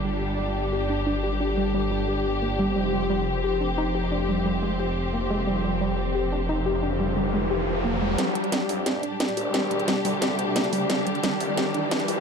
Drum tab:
HH |----------------|----------------|----------------|----------------|
SD |----------------|----------------|----------------|----------------|

HH |----------------|----------------|x-xxx-o-x-x-xxo-|x-xxx-o-x-x-xxo-|
SD |----------------|----------------|o---o---o---o---|o---o---o---o---|

HH |x-xxx-o-x-x-xxo-|
SD |o---o---o---o---|